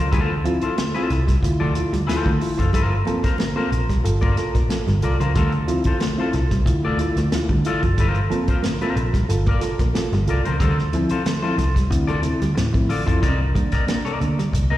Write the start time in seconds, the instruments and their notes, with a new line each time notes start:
0.12 picked electric bass D2, reed electric piano D3 A3, clean electric guitar G3 F4 A4 C5, kick, closed hi-hat, muted conga
0.29 muted clean electric guitar stroke
0.44 clean electric guitar F3, reed electric piano C4 E4 F4, muted clean electric guitar stroke, closed hi-hat, muted conga
0.61 reed electric piano E4 F4, clean electric guitar F4 A4 C5, muted picked electric bass stroke, closed hi-hat
0.77 reed electric piano D3 A3, clean electric guitar A3, muted clean electric guitar stroke, snare, closed hi-hat, high conga
0.94 reed electric piano C4 E4 F4, clean electric guitar F4 A4 C5, closed hi-hat
1.10 picked electric bass C2, reed electric piano E4 F4, muted clean electric guitar stroke, snare, closed hi-hat, low conga
1.27 clean electric guitar G3, muted clean electric guitar stroke, kick, snare, closed hi-hat
1.43 picked electric bass D2, reed electric piano E4 F4, muted clean electric guitar stroke, kick, closed hi-hat
1.60 reed electric piano D3 A3, clean electric guitar F3 F4 A4 D5
1.75 reed electric piano E4 F4, muted clean electric guitar stroke, closed hi-hat, low conga
1.93 picked electric bass D2, clean electric guitar G3, muted clean electric guitar stroke, snare, closed hi-hat
2.07 reed electric piano E4 F4, clean electric guitar F4 A4 C5, snare, closed hi-hat, high conga
2.25 picked electric bass D3, reed electric piano D3 A3, clean electric guitar A3, kick
2.40 reed electric piano E4 F4, muted clean electric guitar stroke, open hi-hat
2.58 picked electric bass F#1, clean electric guitar F3 F4 A4 C5, kick, closed hi-hat, high conga
2.73 picked electric bass G1, reed electric piano G2 D3, clean electric guitar G3 F4 A#4 C5, kick, closed hi-hat, muted conga
2.91 muted clean electric guitar stroke
3.05 clean electric guitar F3, reed electric piano A#3 C4 F4 A4, muted clean electric guitar stroke, closed hi-hat, muted conga
3.23 reed electric piano F4 A4, clean electric guitar F4 A#4 C5, muted picked electric bass stroke, kick, snare, closed hi-hat
3.38 reed electric piano G2 D3, clean electric guitar A#3, muted clean electric guitar stroke, snare, closed hi-hat, high conga
3.56 reed electric piano A#3 C4 F4 A4, clean electric guitar F4 A#4 C5
3.71 picked electric bass A#1, reed electric piano F4 A4, muted clean electric guitar stroke, closed hi-hat, low conga
3.89 clean electric guitar G3, muted clean electric guitar stroke, kick, snare, closed hi-hat
4.04 picked electric bass G1, reed electric piano F4 A4, muted clean electric guitar stroke, closed hi-hat, muted conga
4.21 reed electric piano G2 D3, clean electric guitar A#3 F4 A#4 D5, kick, closed hi-hat
4.37 reed electric piano F4 A4, muted clean electric guitar stroke, snare, closed hi-hat, low conga
4.55 picked electric bass A#1, clean electric guitar A#3, muted clean electric guitar stroke, kick, snare, closed hi-hat
4.69 reed electric piano F4 A4, muted clean electric guitar stroke, snare, closed hi-hat, high conga
4.87 picked electric bass G1, reed electric piano G2 D3, clean electric guitar G3, muted clean electric guitar stroke, snare, closed hi-hat
5.02 picked electric bass C2, reed electric piano F4 A4, clean electric guitar F4 A#4 D5, muted clean electric guitar stroke, closed hi-hat
5.20 picked electric bass C#2, clean electric guitar F3 F4 A#4 C5, closed hi-hat, high conga
5.35 picked electric bass D2, reed electric piano D3 A3, clean electric guitar G3 F4 A4 C5, kick, closed hi-hat, muted conga
5.52 muted clean electric guitar stroke, closed hi-hat
5.67 clean electric guitar F3, reed electric piano C4 E4 F4, muted clean electric guitar stroke, closed hi-hat, muted conga
5.84 reed electric piano E4 F4, clean electric guitar F4 A4 C5, muted picked electric bass stroke, kick, closed hi-hat
6.00 reed electric piano D3 A3, clean electric guitar A3, muted clean electric guitar stroke, snare, closed hi-hat, high conga
6.18 reed electric piano C4 E4 F4, clean electric guitar F4 A4 C5
6.33 picked electric bass C2, reed electric piano E4 F4, muted clean electric guitar stroke, snare, closed hi-hat, low conga
6.51 clean electric guitar G3, muted clean electric guitar stroke, kick, snare, closed hi-hat
6.65 picked electric bass D2, reed electric piano E4 F4, muted clean electric guitar stroke, kick, closed hi-hat
6.83 reed electric piano D3 A3, clean electric guitar A3 F4 A4 D5
6.99 reed electric piano E4 F4, muted clean electric guitar stroke, closed hi-hat, low conga
7.16 picked electric bass D2, clean electric guitar A3, muted clean electric guitar stroke, snare, closed hi-hat
7.31 reed electric piano E4 F4, muted clean electric guitar stroke, snare, closed hi-hat, high conga
7.49 reed electric piano D3 A3, picked electric bass D3, clean electric guitar G3, muted clean electric guitar stroke, kick, closed hi-hat
7.65 reed electric piano E4 F4, clean electric guitar F4 A4 D5, muted clean electric guitar stroke, closed hi-hat
7.82 picked electric bass F#1, clean electric guitar F3, kick, closed hi-hat, high conga
7.97 picked electric bass G1, reed electric piano G2 D3, clean electric guitar G3 F4 A#4 C5, kick, closed hi-hat, muted conga
8.14 muted clean electric guitar stroke, closed hi-hat
8.30 clean electric guitar F3, reed electric piano A#3 C4 F4 A4, muted clean electric guitar stroke, closed hi-hat, muted conga
8.47 reed electric piano F4 A4, clean electric guitar F4 A#4 C5, muted picked electric bass stroke, kick, closed hi-hat
8.62 reed electric piano G2 D3, clean electric guitar A#3, muted clean electric guitar stroke, snare, closed hi-hat, high conga
8.81 reed electric piano A#3 C4 F4 A4, clean electric guitar F4 A#4 C5, closed hi-hat
8.96 picked electric bass A#1, reed electric piano F4 A4, muted clean electric guitar stroke, closed hi-hat, low conga
9.13 clean electric guitar G3, muted clean electric guitar stroke, kick, snare, closed hi-hat
9.29 picked electric bass G1, reed electric piano F4 A4, muted clean electric guitar stroke, closed hi-hat
9.46 reed electric piano G2 D3, clean electric guitar A#3 F4 A#4 D5, kick, closed hi-hat
9.61 reed electric piano F4 A4, muted clean electric guitar stroke, snare, closed hi-hat, low conga
9.79 picked electric bass A#1, clean electric guitar A#3, muted clean electric guitar stroke, kick, snare, closed hi-hat
9.94 reed electric piano F4 A4, muted clean electric guitar stroke, snare, closed hi-hat, high conga
10.11 picked electric bass G1, reed electric piano G2 D3, clean electric guitar G3, muted clean electric guitar stroke, snare, closed hi-hat
10.27 picked electric bass C2, reed electric piano F4 A4, clean electric guitar F4 A#4 D5, muted clean electric guitar stroke, closed hi-hat
10.44 picked electric bass C#2, clean electric guitar F3 F4 A#4 C5, closed hi-hat, high conga
10.60 picked electric bass D2, reed electric piano D3, clean electric guitar G3 F4 A4 C5, kick, closed hi-hat, muted conga
10.79 muted clean electric guitar stroke, snare
10.93 reed electric piano F3 C4 E4, clean electric guitar F3, muted clean electric guitar stroke, closed hi-hat, muted conga
11.09 reed electric piano C4 E4, clean electric guitar F4 A4 C5, muted picked electric bass stroke, closed hi-hat
11.25 reed electric piano D3, clean electric guitar A3, muted clean electric guitar stroke, snare, closed hi-hat, high conga
11.42 reed electric piano F3 C4 E4, clean electric guitar F4 A4 C5
11.58 picked electric bass C2, reed electric piano C4 E4, muted clean electric guitar stroke, snare, closed hi-hat, low conga
11.75 clean electric guitar G3, muted clean electric guitar stroke, kick, snare, closed hi-hat
11.90 picked electric bass D2, reed electric piano C4 E4, muted clean electric guitar stroke, kick, closed hi-hat
12.07 reed electric piano D3, clean electric guitar A3 F4 A4 D5, closed hi-hat
12.22 reed electric piano C4 E4, muted clean electric guitar stroke, closed hi-hat, low conga
12.40 picked electric bass D2, clean electric guitar G3, muted clean electric guitar stroke, snare, closed hi-hat
12.55 picked electric bass A2, muted clean electric guitar stroke, snare, closed hi-hat, high conga
12.73 reed electric piano F3 C4 E4, clean electric guitar A3, muted clean electric guitar stroke, kick, closed hi-hat
12.88 reed electric piano D3, clean electric guitar F4 A4 D5, muted clean electric guitar stroke, open hi-hat
13.06 picked electric bass F2, reed electric piano F3 C4 E4, clean electric guitar F3 F4 A4 C5, kick, closed hi-hat, high conga
13.21 picked electric bass C2, reed electric piano C3, clean electric guitar C4 D#4 A#4 D5, kick, closed hi-hat, muted conga
13.39 reed electric piano A#3 D4, muted clean electric guitar stroke
13.54 reed electric piano D#3 A#3 D4, clean electric guitar G3, muted clean electric guitar stroke, kick, closed hi-hat, muted conga
13.72 clean electric guitar D#4 A#4 D5, muted picked electric bass stroke, kick, snare, closed hi-hat
13.87 reed electric piano A#3 D4, clean electric guitar A#3, muted clean electric guitar stroke, snare, closed hi-hat, high conga
14.05 reed electric piano C3, clean electric guitar D#4 A#4 D5, closed hi-hat
14.20 picked electric bass D2, reed electric piano A#3 D4, muted clean electric guitar stroke, closed hi-hat, low conga
14.39 clean electric guitar G3, muted clean electric guitar stroke, snare, closed hi-hat
14.53 picked electric bass C2, reed electric piano C3, muted clean electric guitar stroke, kick, closed hi-hat, muted conga
14.70 clean electric guitar A#3 D#4 A#4 D#5